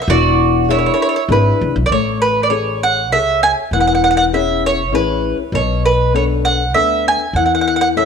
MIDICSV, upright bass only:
0, 0, Header, 1, 2, 480
1, 0, Start_track
1, 0, Key_signature, 3, "major"
1, 0, Tempo, 604230
1, 78, Time_signature, 3, 2, 24, 8
1, 6397, End_track
2, 0, Start_track
2, 0, Title_t, "Upright bass"
2, 0, Program_c, 0, 32
2, 61, Note_on_c, 0, 28, 90
2, 689, Note_off_c, 0, 28, 0
2, 1021, Note_on_c, 0, 32, 81
2, 1189, Note_off_c, 0, 32, 0
2, 1282, Note_on_c, 0, 37, 80
2, 1389, Note_off_c, 0, 37, 0
2, 1396, Note_on_c, 0, 35, 85
2, 1500, Note_off_c, 0, 35, 0
2, 1505, Note_on_c, 0, 33, 67
2, 2474, Note_off_c, 0, 33, 0
2, 2474, Note_on_c, 0, 37, 78
2, 2788, Note_off_c, 0, 37, 0
2, 2948, Note_on_c, 0, 28, 63
2, 3909, Note_off_c, 0, 28, 0
2, 3909, Note_on_c, 0, 33, 76
2, 4223, Note_off_c, 0, 33, 0
2, 4387, Note_on_c, 0, 35, 77
2, 5353, Note_off_c, 0, 35, 0
2, 5353, Note_on_c, 0, 38, 70
2, 5667, Note_off_c, 0, 38, 0
2, 5826, Note_on_c, 0, 40, 75
2, 6397, Note_off_c, 0, 40, 0
2, 6397, End_track
0, 0, End_of_file